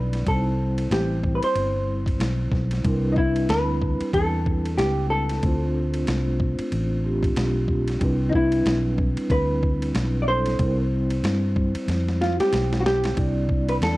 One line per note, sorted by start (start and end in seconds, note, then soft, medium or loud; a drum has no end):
0.00 0.25 B1 medium
0.00 0.22 G3 medium
0.00 0.22 C4 medium
0.00 0.23 D4 medium
0.00 0.23 E4 medium
0.00 0.28 B4 medium
0.00 0.27 D5 medium
0.13 snare soft
0.13 ride medium
0.25 0.88 C2 medium
0.25 2.80 G3 medium
0.25 2.81 C4 medium
0.25 0.35 D#4 soft
0.25 0.94 A4 medium
0.25 2.82 C5 medium
0.25 kick loud
0.25 ride medium
0.34 2.85 E4 medium
0.78 ride medium
0.91 1.40 A1 medium
0.91 1.36 G4 medium
0.91 snare loud
0.91 hi-hat pedal soft
0.91 ride medium
1.24 kick loud
1.35 1.43 B4 medium
1.43 2.04 C5 medium
1.43 ride medium
1.55 2.17 G1 medium
1.55 ride medium
2.06 kick medium
2.06 ride medium
2.20 2.51 B1 medium
2.20 snare loud
2.20 hi-hat pedal medium
2.20 ride medium
2.51 2.83 B1 medium
2.51 kick medium
2.51 snare soft
2.71 snare soft
2.71 ride medium
2.83 3.46 C2 loud
2.83 5.38 G3 medium
2.83 5.39 C4 medium
2.83 5.39 D4 medium
2.83 5.40 E4 medium
2.83 2.94 A#4 medium
2.83 kick loud
2.83 ride medium
2.94 5.43 B4 medium
3.12 3.17 D#4 medium
3.16 3.51 E4 medium
3.16 kick medium
3.36 ride medium
3.49 3.98 D2 medium
3.49 4.13 B4 loud
3.49 snare loud
3.49 hi-hat pedal medium
3.49 ride medium
3.82 kick loud
4.00 muted fingered electric bass stroke soft
4.00 ride medium
4.13 4.79 E2 medium
4.13 4.77 A4 loud
4.13 kick medium
4.13 ride medium
4.46 kick medium
4.66 ride medium
4.78 5.39 C#2 medium
4.78 5.10 G4 medium
4.78 snare loud
4.78 hi-hat pedal medium
4.78 ride medium
5.10 7.64 A4 medium
5.29 snare soft
5.29 ride medium
5.42 6.04 D2 loud
5.42 7.00 A3 medium
5.42 7.01 C4 medium
5.42 7.01 D4 medium
5.42 7.02 F4 medium
5.42 7.02 C5 medium
5.42 kick loud
5.42 ride medium
5.94 ride medium
6.07 6.56 C2 medium
6.07 snare loud
6.07 hi-hat pedal medium
6.07 ride medium
6.40 kick loud
6.59 muted fingered electric bass stroke soft
6.59 ride medium
6.72 7.33 A1 medium
6.72 ride medium
7.04 8.01 A3 medium
7.04 7.99 C4 medium
7.04 8.00 D4 medium
7.04 8.01 F4 medium
7.04 8.02 G4 medium
7.23 kick medium
7.23 ride medium
7.36 7.98 B1 medium
7.36 snare loud
7.36 hi-hat pedal medium
7.36 ride medium
7.68 kick medium
7.88 snare soft
7.88 ride medium
7.99 8.62 C2 loud
7.99 10.22 G3 medium
7.99 10.22 C4 medium
7.99 10.23 D4 medium
7.99 10.23 E4 medium
7.99 10.24 B4 medium
7.99 kick loud
7.99 ride medium
8.29 8.34 D#4 medium
8.29 kick medium
8.35 9.34 E4 medium
8.52 ride medium
8.66 9.14 B1 medium
8.66 snare loud
8.66 hi-hat pedal medium
8.66 ride medium
8.98 kick loud
9.17 muted fingered electric bass stroke soft
9.17 ride medium
9.30 9.91 D2 medium
9.30 10.22 B4 loud
9.30 kick medium
9.30 ride medium
9.63 kick medium
9.82 ride medium
9.95 10.56 B1 medium
9.95 snare loud
9.95 hi-hat pedal medium
9.95 ride medium
10.22 10.27 D5 medium
10.27 10.57 G3 medium
10.27 10.59 C4 soft
10.27 10.59 D4 soft
10.27 10.60 A4 medium
10.27 12.49 C5 loud
10.46 snare soft
10.46 ride medium
10.58 11.20 C2 loud
10.58 13.12 G3 medium
10.58 13.13 C4 medium
10.58 13.14 E4 medium
10.58 kick loud
10.58 ride medium
10.62 10.68 A#4 medium
10.68 13.17 C5 medium
11.10 ride medium
11.23 11.72 G2 medium
11.23 snare loud
11.23 hi-hat pedal medium
11.23 ride medium
11.56 kick loud
11.75 muted fingered electric bass stroke soft
11.75 ride medium
11.88 12.37 F2 medium
11.88 snare medium
11.88 ride medium
12.09 snare medium
12.21 12.40 F4 medium
12.21 snare medium
12.40 12.77 G4 loud
12.40 muted fingered electric bass stroke soft
12.40 snare medium
12.40 ride medium
12.53 13.14 B1 medium
12.53 snare medium
12.53 hi-hat pedal medium
12.53 ride medium
12.73 snare medium
12.80 12.85 F#4 medium
12.86 13.71 G4 loud
12.86 snare loud
13.04 snare medium
13.04 ride medium
13.15 13.78 C2 medium
13.15 13.97 G3 medium
13.15 13.97 C4 medium
13.15 13.97 D4 medium
13.15 13.97 E4 medium
13.15 13.97 D5 medium
13.15 kick loud
13.15 ride medium
13.49 kick medium
13.69 13.74 B4 medium
13.69 ride medium
13.81 13.97 E2 medium
13.81 13.97 A4 medium
13.81 snare loud
13.81 hi-hat pedal soft
13.81 ride medium